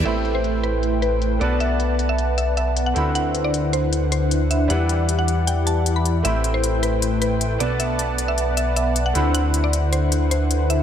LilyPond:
<<
  \new Staff \with { instrumentName = "Synth pluck" } { \time 4/4 \key a \dorian \tempo 4 = 155 e''8 r16 c''8 r16 b'8. r16 b'8. r16 d''8 | e''8 r8. e''8 r16 e''8 e''8 r16 fis''8 r16 | fis''8 r16 d''8 r16 c''8. r16 c''8. r16 e''8 | fis''8 r8. fis''8 r16 g''8 a''8 r16 b''8 r16 |
e''8 r16 c''8 r16 b'8. r16 b'8. r16 d''8 | e''8 r8. e''8 r16 e''8 e''8 r16 fis''8 r16 | fis''8 r16 d''8 r16 c''8. r16 c''8. r16 e''8 | }
  \new Staff \with { instrumentName = "Analog polysynth" } { \time 4/4 \key a \dorian <a e' b' c'' g''>2.~ <a e' b' c'' g''>8 <b b' d'' fis'' a''>8~ | <b b' d'' fis'' a''>2.~ <b b' d'' fis'' a''>8 <d d' e' b' c'' fis''>8~ | <d d' e' b' c'' fis''>1 | <e e' g' d'' fis''>1 |
<a e' b' c'' g''>2.~ <a e' b' c'' g''>8 <b b' d'' fis'' a''>8~ | <b b' d'' fis'' a''>2.~ <b b' d'' fis'' a''>8 <d d' e' b' c'' fis''>8~ | <d d' e' b' c'' fis''>1 | }
  \new Staff \with { instrumentName = "Grand piano" } { \time 4/4 \key a \dorian <a c' e' g' b''>2.~ <a c' e' g' b''>8 <a b d' fis' b'>8~ | <a b d' fis' b'>2.~ <a b d' fis' b'>8 <a c' e' fis' b''>8~ | <a c' e' fis' b''>1 | <g d' e' b' fis''>1 |
<a c' e' g' b''>2.~ <a c' e' g' b''>8 <a b d' fis' b'>8~ | <a b d' fis' b'>2.~ <a b d' fis' b'>8 <a c' e' fis' b''>8~ | <a c' e' fis' b''>1 | }
  \new Staff \with { instrumentName = "Analog synth bass" } { \clef bass \time 4/4 \key a \dorian a,,2.~ a,,8 b,,8~ | b,,2.~ b,,8 d,8~ | d,1 | e,1 |
a,,2.~ a,,8 b,,8~ | b,,2.~ b,,8 d,8~ | d,1 | }
  \new DrumStaff \with { instrumentName = "Drums" } \drummode { \time 4/4 <cymc hh>8 hh8 hh8 hh8 hh8 hh8 hh8 hh8 | hh8 hh8 hh8 hh8 hh8 hh8 hh8 hh8 | hh8 hh8 hh8 hh8 hh8 hh8 hh8 hh8 | hh8 hh8 hh8 hh8 hh8 hh8 hh8 hh8 |
hh8 hh8 hh8 hh8 hh8 hh8 hh8 hh8 | hh8 hh8 hh8 hh8 hh8 hh8 hh8 hh8 | hh8 hh8 hh8 hh8 hh8 hh8 hh8 hh8 | }
>>